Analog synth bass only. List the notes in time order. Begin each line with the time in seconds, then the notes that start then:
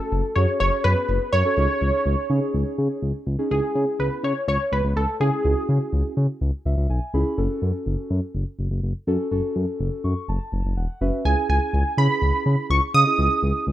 0.12 F#1
0.36 F#2
0.60 F#1
0.85 F#2
1.09 F#1
1.33 F#2
1.57 C#2
1.81 C#2
2.06 C#2
2.30 C#3
2.54 C#2
2.78 C#3
3.02 C#2
3.27 C#2
3.51 C#2
3.75 C#3
3.99 C#2
4.23 C#3
4.48 C#2
4.72 C#2
4.84 C#2
4.96 C#2
5.20 C#3
5.45 C#2
5.69 C#3
5.93 C#2
6.17 C#3
6.41 C#2
6.66 C#2
6.77 C#2
6.90 B1
7.14 C#2
7.38 F#1
7.62 F#2
7.86 F#1
8.10 F#2
8.35 F#1
8.59 F#1
8.71 F#1
8.83 F#1
9.07 F#2
9.31 F#1
9.56 F#2
9.80 F#1
10.04 F#2
10.28 F#1
10.52 F#1
10.65 F#1
10.77 E1
11.01 F#1
11.25 C#2
11.49 C#2
11.73 C#2
11.97 C#3
12.22 C#2
12.46 C#3
12.70 C#2
12.94 C#3
13.18 C#2
13.43 C#2
13.67 C#2